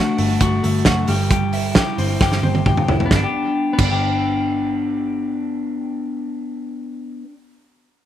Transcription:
Already playing: clean electric guitar A3 D4 F#4
0.18 picked electric bass G1, clean electric guitar A3, open hi-hat
0.40 picked electric bass G1, clean electric guitar F#4, kick, hi-hat pedal, ride
0.63 picked electric bass G1, clean electric guitar A3, open hi-hat
0.85 picked electric bass F#1, clean electric guitar F#4, kick, snare, hi-hat pedal, ride
1.08 picked electric bass G1, clean electric guitar G3, open hi-hat
1.30 clean electric guitar G3, kick, hi-hat pedal, ride
1.53 clean electric guitar E4, open hi-hat
1.75 clean electric guitar G4, kick, snare, hi-hat pedal, ride
1.98 picked electric bass G1, clean electric guitar C4, open hi-hat
2.21 picked electric bass G1, clean electric guitar G4, kick, snare
2.32 snare
2.43 picked electric bass G1, clean electric guitar C4, high tom
2.55 high tom
2.66 picked electric bass G1, clean electric guitar G4, kick, mid tom
2.77 mid tom
2.88 picked electric bass F#1, clean electric guitar E4, floor tom
3.00 floor tom
3.06 clean electric guitar B3
3.11 picked electric bass G1, kick, snare
3.16 clean electric guitar D4
3.24 clean electric guitar G4
3.73 clean electric guitar B3
3.79 picked electric bass G1, kick, crash
3.83 clean electric guitar D4
3.91 clean electric guitar G4

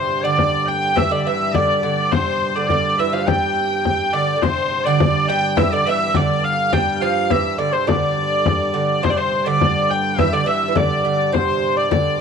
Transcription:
Already playing: harmonium G2, lute C3, hurdy-gurdy C5, shawm C5
0.10 frame drum
0.24 lute D3, hurdy-gurdy D5, shawm D5
0.38 frame drum
0.66 shawm G5, hurdy-gurdy G5, frame drum
0.96 lute E3, shawm E5, hurdy-gurdy E5, frame drum
1.11 lute D3, hurdy-gurdy D5
1.24 lute E3, shawm E5, hurdy-gurdy E5
1.53 lute D3, shawm D5, hurdy-gurdy D5, frame drum
1.82 lute D3, shawm D5, hurdy-gurdy D5, frame drum
2.11 lute C3, shawm C5, hurdy-gurdy C5, frame drum
2.41 frame drum
2.55 lute D3, hurdy-gurdy D5
2.69 lute D3, shawm D5, hurdy-gurdy D5, frame drum
2.97 lute E3, shawm E5, hurdy-gurdy E5, frame drum
3.13 lute F3, hurdy-gurdy F5
3.27 lute G3, shawm G5, hurdy-gurdy G5, frame drum
3.85 frame drum
4.13 lute D3, hurdy-gurdy D5, shawm D5
4.37 lute D3
4.41 harmonium G2, lute C3, shawm C5, hurdy-gurdy C5, frame drum
4.72 frame drum
4.84 lute D3, shawm D5, hurdy-gurdy D5
5.00 frame drum
5.28 lute G3, shawm G5, hurdy-gurdy G5, frame drum
5.57 lute E3, shawm E5, hurdy-gurdy E5, frame drum
5.72 lute D3, shawm D5, hurdy-gurdy D5
5.86 lute E3, shawm E5, hurdy-gurdy E5
6.14 lute D3, shawm D5, hurdy-gurdy D5, frame drum
6.44 hurdy-gurdy F5, shawm F5, frame drum
6.73 lute G3, hurdy-gurdy G5, shawm G5, frame drum
7.01 lute F3, shawm F5, hurdy-gurdy F5
7.30 lute E3, hurdy-gurdy E5, shawm E5, frame drum
7.58 lute D3, hurdy-gurdy D5, shawm D5, frame drum
7.73 lute C3, hurdy-gurdy C5, shawm C5
7.87 lute D3, hurdy-gurdy D5, shawm D5, frame drum
8.18 frame drum
8.46 frame drum
8.74 lute D3, hurdy-gurdy D5
9.02 harmonium G2, lute C3, shawm C5, hurdy-gurdy C5, frame drum
9.10 hurdy-gurdy D5
9.16 lute C3, shawm C5, hurdy-gurdy C5
9.33 frame drum
9.45 lute D3, shawm D5, hurdy-gurdy D5
9.61 frame drum
9.90 shawm G5, hurdy-gurdy G5, frame drum
10.18 lute E3, shawm E5, hurdy-gurdy E5, frame drum
10.32 lute D3, shawm D5, hurdy-gurdy D5
10.46 lute E3, hurdy-gurdy E5, shawm E5, frame drum
10.68 lute E3
10.75 lute D3, shawm D5, hurdy-gurdy D5, frame drum
11.04 lute D3, hurdy-gurdy D5, frame drum
11.32 lute C3, shawm C5, hurdy-gurdy C5, frame drum
11.63 frame drum
11.77 hurdy-gurdy D5, shawm D5
11.91 lute D3, shawm D5, hurdy-gurdy D5, frame drum

